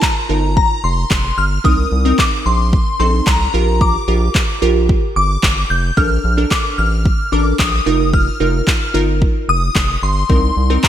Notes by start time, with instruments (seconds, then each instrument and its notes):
0.02 synth bell A#5, kick, clap
0.29 analog synth bass G1, synth pluck D#4 F4 A#4
0.57 synth bell A#5, kick
0.84 analog synth bass F1, synth bell C6
1.11 analog synth bass F1, kick, clap
1.38 analog synth bass G1, synth bell F6
1.64 analog synth bass C2, synth pluck C4 D#4 A#4, synth bell D#6, kick
1.92 analog synth bass C2
2.05 synth pluck C4 D#4 A#4
2.19 synth bell D6, kick, clap
2.46 analog synth bass A#1, synth bell C6
2.73 kick
2.99 analog synth bass A#1, synth pluck C4 D#4 A4, synth bell C6
3.27 analog synth bass C2, synth bell A#5, kick, clap
3.54 analog synth bass A#1, synth pluck F4 G4 A#4
3.81 synth bell D6, kick
4.08 analog synth bass A#1, synth pluck F4 G4 A#4
4.35 kick, clap
4.62 analog synth bass A#1, synth pluck F4 G4 A#4
4.89 kick
5.16 analog synth bass G1, synth bell D6
5.43 analog synth bass G1, kick, clap
5.70 analog synth bass F1, synth bell G6
5.97 analog synth bass A#1, synth pluck D4 A4 A#4, synth bell F6, kick
6.24 analog synth bass A#1
6.37 synth pluck D4 A4 A#4
6.51 synth bell D6, kick, clap
6.78 analog synth bass A1, synth bell F6
7.06 kick
7.32 analog synth bass A1, synth pluck D4 A4 A#4, synth bell D6
7.59 analog synth bass A#1, synth bell D#6, kick, clap
7.86 analog synth bass F1, synth pluck D#4 F4 A#4
8.13 synth bell F6, kick
8.40 analog synth bass F1, synth pluck D#4 F4 A#4
8.67 kick, clap
8.94 analog synth bass G1, synth pluck D#4 F4 A#4
9.22 kick
9.49 analog synth bass F1, synth bell D#6
9.76 analog synth bass F1, kick, clap
10.03 analog synth bass G1, synth bell C6
10.29 analog synth bass C2, synth pluck C4 D#4 A#4, kick
10.57 analog synth bass C2
10.70 synth pluck C4 D#4 A#4
10.84 synth bell A#5, kick, clap